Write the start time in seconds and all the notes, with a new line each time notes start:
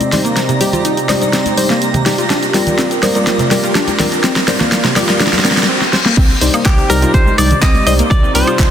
Already playing: C3 C4 D#4 G4 D5 A#5 A#6, riser
0.00 closed hi-hat, high bongo, high conga, shaker
0.12 G3 D#4 C5 D5, snare, open hi-hat, low conga, shaker
0.25 A#3, closed hi-hat, shaker
0.36 C2, snare, closed hi-hat, shaker
0.49 C3, closed hi-hat, shaker
0.61 G3 D#4 G4 C5 D5, open hi-hat, shaker
0.73 F4, closed hi-hat, low conga, shaker
0.85 C2 D#4, closed hi-hat, shaker
0.97 closed hi-hat, shaker
1.09 G3 C4 D#4 C5 D5, snare, open hi-hat, high conga, high woodblock, shaker
1.22 G3 D#4 C5 D5, closed hi-hat, shaker
1.33 C4, snare, closed hi-hat, shaker
1.46 closed hi-hat, high conga, shaker
1.57 G3 D#4 C5 D5, open hi-hat, shaker
1.70 A#3, snare, closed hi-hat, shaker
1.82 C2, closed hi-hat, shaker
1.94 C3, closed hi-hat, high conga, low conga, shaker
2.06 G3 D#4 G4 C5 D5, snare, open hi-hat, high bongo, shaker
2.18 F4, closed hi-hat, shaker
2.30 A#1 A#3 D4, snare, closed hi-hat, shaker
2.43 closed hi-hat, shaker
2.54 G3 C4 F4 A#4 D5, snare, open hi-hat, shaker
2.67 closed hi-hat, low conga, shaker
2.78 C4, snare, closed hi-hat, shaker
2.91 closed hi-hat, shaker
3.03 G3 F4 A#4 C5 D5, snare, open hi-hat, high bongo, high conga, high woodblock, shaker
3.15 G3 A#3 F4 A#4 D5, closed hi-hat, shaker
3.27 snare, closed hi-hat, shaker
3.38 C3, closed hi-hat, high conga, shaker
3.51 G3 F4 G4 A#4 D5, snare, open hi-hat, shaker
3.64 F4, closed hi-hat, shaker
3.75 D4, snare, closed hi-hat, shaker
3.88 closed hi-hat, high bongo, high conga, shaker
3.99 G3 C4 F4 A#4 D5, snare, open hi-hat, low conga, shaker
4.12 closed hi-hat, shaker
4.23 C4 F4, snare, closed hi-hat, shaker
4.36 snare, closed hi-hat, shaker
4.48 A#1 G3 F4 A#4 C5 D5, snare, open hi-hat, shaker
4.60 A#3, snare, closed hi-hat, low conga, shaker
4.72 A#1, snare, closed hi-hat, shaker
4.84 C3, snare, closed hi-hat, shaker
4.96 G3 F4 G4 A#4 D5, snare, open hi-hat, high conga, high woodblock, shaker
5.09 G3 F4 A#4 D5, snare, closed hi-hat, shaker
5.20 D4, snare, closed hi-hat, reverse cymbal, shaker
5.27 snare
5.33 snare, closed hi-hat, high conga, shaker
5.39 snare
5.45 G3 C4 F4 A#4 D5, snare, open hi-hat, shaker
5.51 snare
5.57 snare, closed hi-hat, shaker
5.63 snare
5.69 C4
5.81 snare
5.93 C5, snare
6.05 A#3, snare
6.17 C2 C3 C4 D#4 G4 D5, kick, closed hi-hat, crash, shaker
6.30 shaker
6.41 C2 G3 D#4 C5 D5, open hi-hat, shaker
6.54 A#3, closed hi-hat, high woodblock, shaker
6.66 C2 G4, kick, clap, closed hi-hat
6.78 C3, closed hi-hat, shaker
6.90 C2 G3 D#4 G4 A#4 C5 D5, open hi-hat, high bongo, shaker
7.02 G3 D#4 F4 C5 D5, closed hi-hat, shaker
7.14 C2 D#4 C5, kick, closed hi-hat, shaker
7.27 high conga, shaker
7.38 C2 G3 C4 D#4 C5 D5, open hi-hat, high woodblock, shaker
7.51 closed hi-hat, low conga, shaker
7.62 C2 C4 D#5, kick, clap, closed hi-hat, shaker
7.75 closed hi-hat, high conga, shaker
7.86 C2 G3 D#4 C5 D5 D#5, open hi-hat, shaker
7.99 A#3, closed hi-hat, shaker
8.11 C2 F4 D5, kick, closed hi-hat, shaker
8.23 C3, shaker
8.35 C2 G3 D#4 G4 C5 D5, open hi-hat, shaker
8.47 F4, closed hi-hat, high woodblock, shaker
8.59 C2 D#4, kick, clap, closed hi-hat, shaker